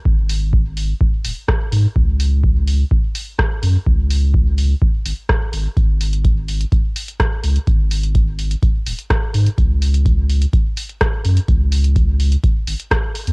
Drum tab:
HH |--o---o---o---o-|--o---o---o---o-|--o---o---o---o-|x-oxx-oxx-oxx-ox|
SD |------------r---|------------r---|------------r---|------------r---|
BD |o---o---o---o---|o---o---o---o---|o---o---o---o---|o---o---o---o---|

HH |x-oxx-oxx-oxx-ox|x-oxx-oxx-oxx-ox|x-oxx-oxx-oxx-ox|
SD |------------r---|------------r---|------------r---|
BD |o---o---o---o---|o---o---o---o---|o---o---o---o---|